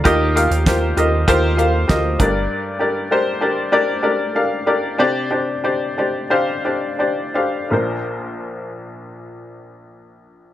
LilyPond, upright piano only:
<<
  \new Staff \with { instrumentName = "Upright piano" } { \time 4/4 \key bes \major \tempo 4 = 93 << { <d'' bes''>16 r2. r8. | r1 | r1 | r1 | } \\ { <f' g' bes' ees''>8 <f' g' bes' f''>8 <f' g' bes' c''>8 <f' g' bes' ees''>8 <f' g' bes' c''>8 <f' g' bes' f''>8 <f' g' bes' ees''>8 <d' g' bes' d''>8~ | <d' g' bes' d''>8 <d' g' bes' d''>8 <d' g' bes' c''>8 <d' g' bes' d''>8 <d' g' bes' d''>8 <d' g' bes' d''>8 <d' g' bes' f''>8 <d' g' bes' d''>8 | <d' g' c'' d''>8 <d' g' c'' d''>8 <d' g' c'' d''>8 <d' g' c'' d''>8 <d' g' c'' f''>8 <d' g' c'' d''>8 <d' g' c'' d''>8 <d' g' c'' f''>8 | <d' f' bes' c''>1 | } >> }
  \new Staff \with { instrumentName = "Upright piano" } { \clef bass \time 4/4 \key bes \major ees4. r2 g,8~ | g,4 r2. | c4. r2 r8 | bes,,1 | }
>>